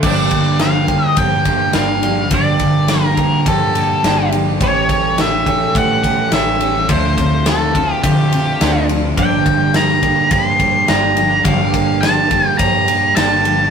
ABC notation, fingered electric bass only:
X:1
M:4/4
L:1/8
Q:1/4=105
K:Gm
V:1 name="Fingered electric bass" clef=bass
G,,,4 G,,2 G,,,2 | G,,,4 G,,2 G,,,2 | A,,,4 A,,2 A,,,2 | D,,4 D,2 D,,2 |
G,,,4 G,,2 G,,,2 | G,,,4 G,,2 G,,,2 |]